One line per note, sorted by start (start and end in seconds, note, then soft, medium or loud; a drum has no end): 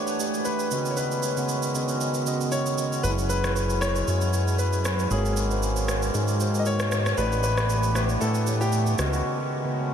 0.00 0.70 E3 medium
0.00 0.19 A3 medium
0.00 0.70 A3 medium
0.00 5.07 B3 medium
0.00 0.14 D4 medium
0.00 0.70 D4 medium
0.00 0.20 G4 medium
0.00 0.70 G4 medium
0.00 0.20 B4 medium
0.00 0.48 C#5 loud
0.00 0.72 C#5 medium
0.00 0.21 D5 loud
0.00 0.73 E5 medium
0.07 shaker medium
0.19 0.71 A3 medium
0.19 0.71 G4 medium
0.19 0.72 B4 medium
0.19 0.72 D5 medium
0.19 shaker medium
0.34 shaker medium
0.45 0.92 B4 medium
0.45 shaker medium
0.59 shaker medium
0.71 1.23 C#3 medium
0.71 3.02 D#3 medium
0.71 7.14 G#3 medium
0.71 1.23 B3 medium
0.71 3.02 C#4 medium
0.71 7.14 F#4 medium
0.71 1.23 F#4 medium
0.71 1.24 D#5 medium
0.71 shaker medium
0.85 shaker soft
0.90 0.97 C#5 medium
0.97 1.71 B4 medium
0.97 shaker medium
1.12 shaker soft
1.23 shaker medium
1.37 1.68 C#3 medium
1.37 1.68 B3 medium
1.37 1.68 F#4 medium
1.37 1.68 F#5 medium
1.37 shaker medium
1.49 shaker medium
1.63 shaker medium
1.74 2.17 C#3 medium
1.74 2.17 B3 medium
1.74 2.18 F#4 medium
1.74 2.18 D#5 medium
1.74 shaker medium
1.89 shaker medium
2.01 shaker medium
2.14 shaker soft
2.26 2.69 C#3 medium
2.26 2.69 B3 medium
2.26 2.69 F#4 medium
2.26 2.70 D#5 medium
2.26 shaker medium
2.41 shaker medium
2.52 3.00 C#5 loud
2.52 shaker medium
2.66 shaker medium
2.78 2.99 C#3 medium
2.78 2.99 B3 medium
2.78 3.00 F#4 medium
2.78 3.00 D#5 medium
2.78 shaker medium
2.93 shaker soft
3.03 4.03 F#1 loud
3.03 5.09 E3 medium
3.03 3.35 F#3 medium
3.03 7.14 C#4 medium
3.03 3.36 E4 medium
3.03 3.36 G#4 medium
3.03 3.09 B4 loud
3.03 3.36 B4 loud
3.03 shaker medium
3.18 shaker soft
3.29 3.83 B4 loud
3.29 shaker medium
3.44 3.74 F#3 medium
3.44 3.75 E4 medium
3.44 3.75 G#4 medium
3.44 3.75 C#5 medium
3.44 cross-stick medium
3.44 shaker medium
3.56 shaker medium
3.70 shaker medium
3.81 4.24 F#3 medium
3.81 4.24 E4 medium
3.81 4.25 B4 medium
3.81 4.55 C#5 loud
3.81 cross-stick medium
3.81 shaker medium
3.96 shaker medium
4.07 5.07 F#2 loud
4.07 shaker medium
4.21 shaker medium
4.33 4.96 F#3 medium
4.33 4.96 E4 medium
4.33 4.97 G#4 medium
4.33 4.97 B4 medium
4.33 shaker medium
4.48 shaker medium
4.59 5.12 B4 medium
4.59 shaker medium
4.73 shaker soft
4.85 cross-stick loud
4.85 shaker medium
4.99 shaker soft
5.10 6.10 G#1 loud
5.10 7.16 D#3 medium
5.10 5.42 G#3 medium
5.10 7.16 A#3 medium
5.10 5.43 F#4 medium
5.10 5.84 G#4 medium
5.10 5.43 A#4 medium
5.10 5.43 C#5 loud
5.10 shaker medium
5.25 shaker soft
5.37 shaker medium
5.50 5.81 G#3 medium
5.50 5.82 F#4 medium
5.50 5.82 A#4 medium
5.50 5.82 C5 medium
5.50 shaker medium
5.63 shaker medium
5.76 shaker medium
5.88 6.31 G#3 medium
5.88 6.31 F#4 medium
5.88 6.31 A#4 medium
5.88 6.32 C#5 medium
5.88 cross-stick medium
5.88 shaker medium
6.02 shaker medium
6.14 7.14 G#2 loud
6.14 shaker medium
6.28 shaker medium
6.40 6.82 G#3 medium
6.40 6.83 F#4 medium
6.40 6.83 A#4 medium
6.40 6.83 C5 medium
6.40 shaker medium
6.55 shaker medium
6.60 6.66 D#5 medium
6.66 7.20 C#5 loud
6.66 shaker medium
6.80 cross-stick medium
6.80 shaker soft
6.91 7.13 G#3 medium
6.91 7.13 F#4 medium
6.91 7.13 A#4 medium
6.91 7.14 D#5 medium
6.91 cross-stick loud
6.91 shaker medium
7.06 cross-stick loud
7.06 shaker soft
7.17 8.17 A1 loud
7.17 8.97 E3 medium
7.17 7.49 A3 loud
7.17 8.97 A3 medium
7.17 9.94 B3 medium
7.17 8.97 D4 medium
7.17 8.97 G4 medium
7.17 7.49 G4 medium
7.17 7.42 B4 loud
7.17 7.50 B4 medium
7.17 7.50 D5 loud
7.17 shaker medium
7.32 shaker soft
7.43 7.94 B4 loud
7.43 shaker medium
7.57 7.88 A3 medium
7.57 7.88 G4 medium
7.57 7.89 B4 medium
7.57 7.89 D5 medium
7.57 cross-stick medium
7.57 shaker soft
7.70 shaker medium
7.83 shaker medium
7.95 8.38 A3 medium
7.95 8.38 G4 medium
7.95 8.01 B4 medium
7.95 8.38 B4 medium
7.95 8.38 E5 medium
7.95 cross-stick medium
7.95 shaker medium
8.09 shaker medium
8.21 8.95 A2 loud
8.21 8.62 A4 medium
8.21 shaker medium
8.34 shaker medium
8.47 8.99 A3 medium
8.47 8.99 G4 medium
8.47 8.99 B4 medium
8.47 9.00 C#5 medium
8.47 shaker medium
8.61 9.00 G4 loud
8.61 shaker medium
8.72 shaker medium
8.87 shaker medium
8.98 9.22 C#2 loud
8.98 9.50 C#3 medium
8.98 9.94 D#3 medium
8.98 9.94 G#3 medium
8.98 9.51 B3 medium
8.98 9.94 C#4 medium
8.98 9.03 F#4 medium
8.98 9.94 F#4 medium
8.98 9.51 F#4 medium
8.98 9.51 D#5 medium
8.98 cross-stick medium
8.98 shaker medium
9.12 9.86 F#4 medium
9.12 shaker soft
9.64 9.94 C#3 medium
9.64 9.94 B3 medium
9.64 9.94 F#4 medium
9.64 9.94 B4 medium